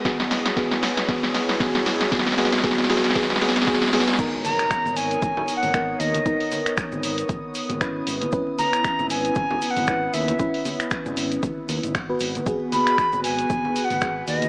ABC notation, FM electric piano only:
X:1
M:4/4
L:1/16
Q:"Swing 16ths" 1/4=116
K:B
V:1 name="FM electric piano"
[B,FG]4 [B,FG]4 [B,FG]4 [B,FG]4 | [B,FG]2 [B,FG]2 [B,FG]2 [B,FG]2 [B,FG]2 [B,FG]2 [B,FG]2 [B,FG]2 | [B,DA]12 [B,DA]4 | [B,DA]12 [CEB]4 |
[CEB]12 [CEB]4 | [CEB]12 z [B,FB]3 | [B,FG]12 [B,FG]4 |]